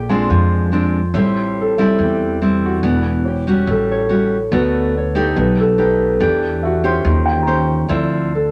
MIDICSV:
0, 0, Header, 1, 5, 480
1, 0, Start_track
1, 0, Tempo, 421644
1, 1303, Time_signature, 4, 2, 24, 8
1, 9691, End_track
2, 0, Start_track
2, 0, Title_t, "Grand piano"
2, 0, Program_c, 0, 0
2, 0, Control_c, 0, 64, 127
2, 109, Note_on_c, 0, 80, 36
2, 840, Note_off_c, 0, 80, 0
2, 1319, Control_c, 0, 64, 0
2, 1516, Control_c, 0, 64, 127
2, 2026, Note_on_c, 0, 76, 40
2, 2757, Note_off_c, 0, 76, 0
2, 3237, Control_c, 0, 64, 0
2, 3407, Control_c, 0, 64, 127
2, 3701, Note_on_c, 0, 73, 43
2, 4195, Control_c, 0, 64, 0
2, 4375, Note_off_c, 0, 73, 0
2, 6295, Control_c, 0, 64, 127
2, 6583, Note_on_c, 0, 71, 53
2, 7079, Control_c, 0, 64, 0
2, 7258, Note_off_c, 0, 71, 0
2, 7292, Control_c, 0, 64, 127
2, 7546, Note_on_c, 0, 76, 38
2, 7992, Note_off_c, 0, 76, 0
2, 8037, Control_c, 0, 64, 0
2, 8254, Control_c, 0, 64, 127
2, 8260, Note_on_c, 0, 79, 51
2, 8448, Note_on_c, 0, 82, 32
2, 8997, Note_off_c, 0, 79, 0
2, 8999, Control_c, 0, 64, 0
2, 9152, Note_off_c, 0, 82, 0
2, 9691, End_track
3, 0, Start_track
3, 0, Title_t, "Harp"
3, 0, Program_c, 1, 46
3, 0, Note_on_c, 1, 67, 78
3, 0, Note_on_c, 1, 72, 79
3, 149, Note_on_c, 1, 65, 70
3, 731, Note_off_c, 1, 72, 0
3, 1342, Note_on_c, 1, 72, 80
3, 1829, Note_on_c, 1, 69, 81
3, 2306, Note_off_c, 1, 67, 0
3, 2310, Note_on_c, 1, 67, 86
3, 3021, Note_off_c, 1, 65, 0
3, 3022, Note_on_c, 1, 66, 77
3, 3090, Note_off_c, 1, 67, 0
3, 3595, Note_off_c, 1, 72, 0
3, 3729, Note_on_c, 1, 67, 76
3, 3797, Note_off_c, 1, 66, 0
3, 4212, Note_off_c, 1, 69, 0
3, 4216, Note_on_c, 1, 69, 76
3, 4457, Note_on_c, 1, 73, 89
3, 5175, Note_on_c, 1, 71, 76
3, 5656, Note_off_c, 1, 73, 0
3, 5661, Note_on_c, 1, 73, 80
3, 6139, Note_off_c, 1, 71, 0
3, 6143, Note_on_c, 1, 71, 73
3, 6367, Note_off_c, 1, 69, 0
3, 6372, Note_on_c, 1, 69, 94
3, 6408, Note_off_c, 1, 67, 0
3, 7093, Note_on_c, 1, 67, 76
3, 7571, Note_on_c, 1, 66, 83
3, 7639, Note_off_c, 1, 67, 0
3, 7806, Note_on_c, 1, 65, 81
3, 7837, Note_off_c, 1, 73, 0
3, 7874, Note_off_c, 1, 66, 0
3, 8476, Note_off_c, 1, 71, 0
3, 8872, Note_off_c, 1, 69, 0
3, 9012, Note_on_c, 1, 72, 79
3, 9505, Note_on_c, 1, 69, 74
3, 9691, Note_off_c, 1, 65, 0
3, 9691, Note_off_c, 1, 69, 0
3, 9691, Note_off_c, 1, 72, 0
3, 9691, End_track
4, 0, Start_track
4, 0, Title_t, "Nylon-string guitar"
4, 0, Program_c, 2, 24
4, 0, Note_on_c, 2, 46, 53
4, 107, Note_on_c, 2, 56, 58
4, 114, Note_on_c, 2, 60, 53
4, 119, Note_on_c, 2, 62, 61
4, 321, Note_off_c, 2, 46, 0
4, 339, Note_on_c, 2, 53, 53
4, 787, Note_off_c, 2, 56, 0
4, 789, Note_off_c, 2, 60, 0
4, 792, Note_off_c, 2, 62, 0
4, 818, Note_on_c, 2, 56, 42
4, 828, Note_on_c, 2, 60, 49
4, 828, Note_on_c, 2, 62, 54
4, 1129, Note_off_c, 2, 56, 0
4, 1134, Note_off_c, 2, 60, 0
4, 1134, Note_off_c, 2, 62, 0
4, 1276, Note_off_c, 2, 53, 0
4, 1297, Note_on_c, 2, 45, 56
4, 1297, Note_on_c, 2, 55, 53
4, 1302, Note_on_c, 2, 60, 57
4, 1308, Note_on_c, 2, 64, 57
4, 1980, Note_off_c, 2, 55, 0
4, 1983, Note_off_c, 2, 60, 0
4, 1984, Note_off_c, 2, 64, 0
4, 2029, Note_on_c, 2, 55, 55
4, 2035, Note_on_c, 2, 60, 56
4, 2038, Note_on_c, 2, 64, 68
4, 2235, Note_off_c, 2, 45, 0
4, 2269, Note_on_c, 2, 52, 47
4, 2707, Note_off_c, 2, 55, 0
4, 2708, Note_off_c, 2, 60, 0
4, 2711, Note_off_c, 2, 64, 0
4, 2749, Note_on_c, 2, 55, 48
4, 2751, Note_on_c, 2, 60, 46
4, 2758, Note_on_c, 2, 64, 46
4, 3187, Note_off_c, 2, 55, 0
4, 3187, Note_off_c, 2, 60, 0
4, 3191, Note_off_c, 2, 64, 0
4, 3201, Note_off_c, 2, 52, 0
4, 3223, Note_on_c, 2, 52, 52
4, 3226, Note_on_c, 2, 59, 58
4, 3231, Note_on_c, 2, 62, 46
4, 3700, Note_off_c, 2, 59, 0
4, 3703, Note_off_c, 2, 62, 0
4, 3946, Note_off_c, 2, 52, 0
4, 3951, Note_on_c, 2, 55, 55
4, 3958, Note_on_c, 2, 61, 54
4, 3963, Note_on_c, 2, 66, 57
4, 4180, Note_on_c, 2, 45, 49
4, 4627, Note_off_c, 2, 55, 0
4, 4631, Note_off_c, 2, 61, 0
4, 4632, Note_off_c, 2, 66, 0
4, 4656, Note_on_c, 2, 55, 45
4, 4662, Note_on_c, 2, 61, 43
4, 4671, Note_on_c, 2, 66, 44
4, 4968, Note_off_c, 2, 55, 0
4, 4970, Note_off_c, 2, 61, 0
4, 4975, Note_off_c, 2, 66, 0
4, 5117, Note_off_c, 2, 45, 0
4, 5140, Note_on_c, 2, 50, 55
4, 5144, Note_on_c, 2, 57, 56
4, 5150, Note_on_c, 2, 59, 59
4, 5156, Note_on_c, 2, 66, 53
4, 5621, Note_off_c, 2, 57, 0
4, 5621, Note_off_c, 2, 59, 0
4, 5626, Note_off_c, 2, 66, 0
4, 5863, Note_on_c, 2, 57, 58
4, 5868, Note_on_c, 2, 63, 54
4, 5873, Note_on_c, 2, 67, 63
4, 6077, Note_off_c, 2, 50, 0
4, 6104, Note_on_c, 2, 47, 52
4, 6544, Note_off_c, 2, 57, 0
4, 6547, Note_off_c, 2, 63, 0
4, 6550, Note_off_c, 2, 67, 0
4, 6580, Note_on_c, 2, 57, 46
4, 6585, Note_on_c, 2, 63, 42
4, 6588, Note_on_c, 2, 67, 48
4, 7024, Note_off_c, 2, 57, 0
4, 7025, Note_off_c, 2, 63, 0
4, 7026, Note_off_c, 2, 67, 0
4, 7040, Note_off_c, 2, 47, 0
4, 7057, Note_on_c, 2, 52, 49
4, 7063, Note_on_c, 2, 57, 54
4, 7063, Note_on_c, 2, 62, 51
4, 7070, Note_on_c, 2, 67, 55
4, 7744, Note_off_c, 2, 57, 0
4, 7746, Note_off_c, 2, 62, 0
4, 7748, Note_off_c, 2, 67, 0
4, 7783, Note_on_c, 2, 61, 51
4, 7788, Note_on_c, 2, 67, 52
4, 7791, Note_on_c, 2, 72, 58
4, 7998, Note_off_c, 2, 52, 0
4, 8037, Note_on_c, 2, 51, 54
4, 8466, Note_off_c, 2, 61, 0
4, 8469, Note_off_c, 2, 67, 0
4, 8469, Note_off_c, 2, 72, 0
4, 8503, Note_on_c, 2, 61, 43
4, 8508, Note_on_c, 2, 67, 42
4, 8512, Note_on_c, 2, 72, 53
4, 8947, Note_off_c, 2, 61, 0
4, 8947, Note_off_c, 2, 67, 0
4, 8951, Note_off_c, 2, 72, 0
4, 8968, Note_off_c, 2, 51, 0
4, 8976, Note_on_c, 2, 53, 56
4, 8982, Note_on_c, 2, 50, 59
4, 8982, Note_on_c, 2, 60, 50
4, 8988, Note_on_c, 2, 64, 63
4, 9459, Note_off_c, 2, 53, 0
4, 9461, Note_off_c, 2, 60, 0
4, 9465, Note_off_c, 2, 64, 0
4, 9691, Note_off_c, 2, 50, 0
4, 9691, End_track
5, 0, Start_track
5, 0, Title_t, "Upright bass"
5, 0, Program_c, 3, 32
5, 0, Note_on_c, 3, 34, 86
5, 297, Note_off_c, 3, 34, 0
5, 343, Note_on_c, 3, 41, 92
5, 1257, Note_off_c, 3, 41, 0
5, 1295, Note_on_c, 3, 33, 93
5, 2212, Note_off_c, 3, 33, 0
5, 2262, Note_on_c, 3, 40, 85
5, 3175, Note_off_c, 3, 40, 0
5, 3221, Note_on_c, 3, 28, 99
5, 4135, Note_off_c, 3, 28, 0
5, 4181, Note_on_c, 3, 33, 95
5, 5095, Note_off_c, 3, 33, 0
5, 5142, Note_on_c, 3, 38, 100
5, 6057, Note_off_c, 3, 38, 0
5, 6107, Note_on_c, 3, 35, 99
5, 7020, Note_off_c, 3, 35, 0
5, 7062, Note_on_c, 3, 40, 95
5, 7978, Note_off_c, 3, 40, 0
5, 8022, Note_on_c, 3, 39, 102
5, 8939, Note_off_c, 3, 39, 0
5, 8985, Note_on_c, 3, 38, 90
5, 9691, Note_off_c, 3, 38, 0
5, 9691, End_track
0, 0, End_of_file